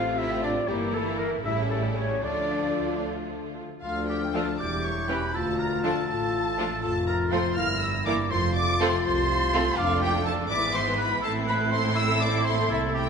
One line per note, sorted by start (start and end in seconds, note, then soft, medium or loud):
0.00 0.66 A1 medium
0.00 0.68 C3 medium
0.00 0.67 A3 soft
0.00 0.66 C4 medium
0.00 0.67 C4 medium
0.00 0.18 F4 medium
0.00 0.68 F4 medium
0.00 0.19 F5 medium
0.18 0.42 E4 medium
0.18 0.42 E5 medium
0.18 0.45 E5 medium
0.42 0.51 D4 medium
0.42 0.50 D5 medium
0.42 0.70 D5 medium
0.67 1.41 G1 medium
0.67 1.41 E3 medium
0.67 0.93 G3 medium
0.67 1.41 A#3 medium
0.67 1.06 A#3 soft
0.67 1.03 A#3 soft
0.67 1.40 E4 medium
0.67 1.45 E4 medium
0.67 0.76 G4 medium
0.67 0.95 G4 medium
0.93 1.19 A3 medium
0.93 1.18 A4 medium
1.05 1.44 A3 soft
1.05 1.44 A3 medium
1.18 1.27 A#3 medium
1.18 1.45 A#4 medium
1.18 1.30 A#4 medium
1.45 2.24 A1 medium
1.45 2.22 C#3 soft
1.45 2.23 G3 medium
1.45 2.22 G3 medium
1.45 2.22 A3 medium
1.45 2.23 C#4 medium
1.45 2.22 E4 medium
1.45 1.70 E4 medium
1.45 1.70 E5 medium
1.45 1.57 E5 medium
1.70 1.96 A3 medium
1.70 1.97 A4 medium
1.70 1.82 A4 medium
1.96 2.23 C#4 medium
1.96 2.23 C#5 medium
1.96 2.24 C#5 medium
2.23 3.63 D2 soft
2.23 3.63 D3 soft
2.23 3.57 F3 soft
2.23 3.63 F3 soft
2.23 3.60 A3 medium
2.23 3.54 D4 medium
2.23 3.02 D4 medium
2.23 3.60 F4 soft
2.23 3.02 D5 medium
3.83 4.47 D2 medium
3.83 4.56 F3 medium
3.83 4.56 D4 medium
3.83 4.07 F4 medium
3.83 4.61 A4 soft
3.83 4.07 F5 medium
3.83 4.61 F6 soft
4.08 4.21 G4 soft
4.08 4.33 G5 medium
4.33 4.46 F3 medium
4.33 4.46 A3 soft
4.33 4.46 D4 soft
4.33 4.46 F4 medium
4.33 4.46 A4 medium
4.33 4.59 A5 medium
4.59 5.22 E1 medium
4.59 5.22 E2 medium
4.59 5.34 G3 medium
4.59 5.34 E4 medium
4.59 5.35 G4 soft
4.59 4.86 D5 medium
4.59 4.84 D6 medium
4.59 5.36 G6 soft
4.84 5.10 C#5 medium
4.84 5.09 C#6 medium
5.08 5.21 E3 medium
5.08 5.21 G3 medium
5.08 5.20 C#4 soft
5.08 5.21 G4 soft
5.08 5.33 B4 medium
5.08 5.34 B5 medium
5.34 5.96 D2 medium
5.34 6.07 A3 medium
5.34 7.59 F4 medium
5.34 6.07 F4 soft
5.34 5.58 A4 medium
5.34 5.59 A5 medium
5.34 7.59 A6 soft
5.58 5.85 A#4 medium
5.58 5.83 A#5 medium
5.83 5.95 F3 medium
5.83 5.95 A3 medium
5.83 5.95 D4 medium
5.83 5.95 F4 medium
5.83 6.07 A4 medium
5.83 6.07 A5 medium
6.08 6.71 A1 medium
6.08 6.71 A2 medium
6.08 6.81 A3 medium
6.08 6.82 F4 medium
6.08 6.81 A4 medium
6.08 6.82 A5 medium
6.58 6.70 F3 medium
6.58 6.70 A3 medium
6.58 6.70 D4 medium
6.58 6.70 F4 medium
6.83 7.45 F1 medium
6.83 7.45 F2 medium
6.83 7.56 A3 medium
6.83 7.56 F4 medium
6.83 6.94 A4 medium
6.83 7.07 A5 medium
7.07 7.34 A#4 medium
7.07 7.15 A#5 medium
7.31 7.44 F3 medium
7.31 7.44 A3 medium
7.31 7.43 C4 medium
7.31 7.43 F4 medium
7.31 7.56 C5 medium
7.31 7.56 C6 medium
7.56 8.18 G1 medium
7.56 8.18 G2 medium
7.56 8.30 A#3 medium
7.56 8.30 E4 medium
7.56 8.33 E4 medium
7.56 7.68 F5 medium
7.56 7.81 F6 medium
7.56 8.31 A#6 medium
7.81 7.93 E5 medium
7.81 8.06 E6 medium
8.06 8.18 E3 medium
8.06 8.18 A#3 medium
8.06 8.18 E4 medium
8.06 8.18 A#4 medium
8.06 8.32 D5 medium
8.06 8.14 D6 medium
8.31 8.92 F1 medium
8.31 8.92 F2 medium
8.31 9.04 A3 medium
8.31 9.03 F4 medium
8.31 10.23 F4 medium
8.31 8.55 C5 medium
8.31 8.55 C6 medium
8.31 9.74 A6 medium
8.55 8.80 D5 medium
8.55 8.80 D6 medium
8.80 8.91 A3 medium
8.80 8.92 C4 medium
8.80 8.91 F4 medium
8.80 8.91 A4 medium
8.80 8.92 C5 medium
8.80 9.04 C6 medium
9.05 9.65 C2 medium
9.05 9.76 A3 medium
9.05 9.76 F4 medium
9.05 9.79 C5 medium
9.05 9.76 C6 medium
9.53 9.64 A3 medium
9.53 9.64 C4 medium
9.53 9.64 F4 medium
9.53 9.64 A4 medium
9.77 10.46 F1 medium
9.77 10.46 F2 medium
9.77 10.46 A3 medium
9.77 10.46 D4 medium
9.77 10.46 F4 medium
9.77 10.01 F4 medium
9.77 10.46 A4 medium
9.77 10.01 F5 medium
9.77 10.23 D6 medium
10.01 10.13 G4 medium
10.01 10.25 G5 medium
10.26 10.49 A4 medium
10.26 10.34 A5 medium
10.49 11.23 G#1 medium
10.49 11.23 G#2 medium
10.49 11.20 E3 medium
10.49 11.23 B3 medium
10.49 11.20 B3 medium
10.49 13.09 E4 medium
10.49 11.19 B4 medium
10.49 10.74 D5 medium
10.49 10.74 D6 medium
10.49 11.19 B6 medium
10.74 10.98 C5 medium
10.74 10.99 C6 medium
10.98 11.09 B4 medium
10.98 11.23 B5 medium
11.22 12.68 A1 medium
11.22 12.68 A2 medium
11.22 13.09 A3 medium
11.22 13.09 C4 medium
11.22 12.53 C4 medium
11.22 11.33 A4 medium
11.22 13.09 A4 medium
11.22 11.31 A5 loud
11.22 12.67 C7 medium
11.46 11.73 B4 medium
11.46 11.56 B5 medium
11.71 11.95 C5 medium
11.71 11.96 C6 medium
11.95 12.19 E5 medium
11.95 12.21 E6 loud
12.20 12.46 D5 medium
12.20 12.46 D6 medium
12.44 12.69 C5 medium
12.44 12.70 C6 medium
12.69 13.09 C2 medium
12.69 13.09 A3 medium
12.69 12.94 E4 medium
12.69 12.79 E5 medium
12.69 13.09 A6 medium
12.94 13.06 G4 medium
12.94 13.09 G5 medium